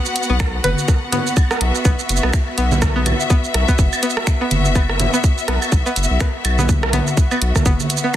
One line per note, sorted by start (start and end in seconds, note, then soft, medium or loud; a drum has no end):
0.00 8.16 B3 medium
0.00 8.16 F#4 medium
0.00 1.65 F#5 medium
0.06 shaker soft
0.16 closed hi-hat loud
0.16 shaker soft
0.23 shaker soft
0.30 0.60 B1 medium
0.30 0.32 B3 medium
0.40 finger snap loud
0.40 kick loud
0.40 cross-stick medium
0.40 high woodblock medium
0.40 shaker soft
0.64 0.74 F#1 loud
0.64 0.69 B4 loud
0.64 closed hi-hat loud
0.64 high conga medium
0.64 shaker soft
0.78 shaker soft
0.88 kick loud
0.88 cross-stick soft
0.88 shaker medium
1.12 1.16 B3 medium
1.12 closed hi-hat medium
1.12 low conga medium
1.12 shaker soft
1.27 shaker soft
1.37 kick loud
1.37 high woodblock medium
1.37 shaker medium
1.51 1.55 B3 medium
1.51 cross-stick medium
1.51 shaker soft
1.61 1.71 B1 loud
1.61 8.16 E5 medium
1.61 closed hi-hat medium
1.75 shaker soft
1.85 1.95 B1 medium
1.85 1.88 B3 medium
1.85 kick loud
1.85 shaker soft
1.99 shaker soft
2.09 2.20 F#1 medium
2.09 closed hi-hat loud
2.09 shaker soft
2.16 shaker medium
2.23 2.31 B1 medium
2.23 2.27 B3 medium
2.23 cross-stick soft
2.23 high woodblock medium
2.33 finger snap loud
2.33 kick loud
2.33 shaker soft
2.58 3.14 B1 medium
2.58 2.61 B3 medium
2.58 closed hi-hat medium
2.58 shaker soft
2.72 high conga medium
2.72 low conga medium
2.72 shaker soft
2.82 kick loud
2.82 cross-stick medium
2.82 shaker medium
2.96 3.00 B3 medium
3.06 closed hi-hat medium
3.06 low conga medium
3.06 high woodblock medium
3.06 shaker soft
3.20 shaker soft
3.30 3.33 B3 medium
3.30 kick loud
3.30 shaker medium
3.44 shaker soft
3.54 3.65 B1 loud
3.54 cross-stick soft
3.54 closed hi-hat medium
3.68 3.72 B3 medium
3.68 kick medium
3.68 shaker soft
3.79 3.89 F#1 medium
3.79 kick loud
3.79 shaker medium
3.93 high woodblock medium
3.93 shaker soft
4.03 4.06 B3 medium
4.03 closed hi-hat medium
4.03 shaker soft
4.10 shaker medium
4.17 cross-stick medium
4.27 finger snap loud
4.27 kick loud
4.27 shaker medium
4.41 4.45 B3 medium
4.51 5.08 F#1 medium
4.51 closed hi-hat medium
4.51 high conga medium
4.51 shaker soft
4.65 shaker soft
4.75 4.79 B3 medium
4.75 kick loud
4.75 high woodblock medium
4.75 shaker medium
4.89 cross-stick soft
5.00 closed hi-hat medium
5.00 low conga medium
5.00 shaker soft
5.14 5.18 B3 medium
5.14 shaker soft
5.24 kick loud
5.24 shaker medium
5.38 shaker soft
5.48 5.58 B1 loud
5.48 5.51 B3 medium
5.48 cross-stick medium
5.48 closed hi-hat medium
5.62 high woodblock medium
5.62 shaker soft
5.72 5.83 B1 medium
5.72 kick loud
5.72 shaker medium
5.86 5.90 B3 medium
5.86 shaker soft
5.96 6.07 F#1 medium
5.96 closed hi-hat medium
5.96 shaker soft
6.03 shaker medium
6.11 6.18 B1 medium
6.20 6.24 B3 medium
6.20 finger snap loud
6.20 kick loud
6.20 cross-stick soft
6.20 shaker medium
6.45 7.01 B1 medium
6.45 closed hi-hat medium
6.45 high woodblock medium
6.45 shaker soft
6.59 6.63 B3 medium
6.59 high conga medium
6.59 low conga medium
6.59 shaker soft
6.69 kick loud
6.69 shaker medium
6.83 cross-stick medium
6.93 6.96 B3 medium
6.93 closed hi-hat medium
6.93 high conga medium
6.93 low conga medium
6.93 shaker soft
7.07 shaker soft
7.17 kick loud
7.17 shaker medium
7.31 7.35 B3 medium
7.31 high woodblock medium
7.31 shaker soft
7.42 7.52 B1 loud
7.42 closed hi-hat medium
7.56 kick medium
7.56 cross-stick soft
7.56 high conga medium
7.56 shaker soft
7.66 7.76 F#1 medium
7.66 7.69 B3 medium
7.66 kick loud
7.66 shaker medium
7.80 high conga soft
7.80 shaker soft
7.90 closed hi-hat medium
7.90 shaker soft
7.97 shaker medium
8.04 8.08 B3 medium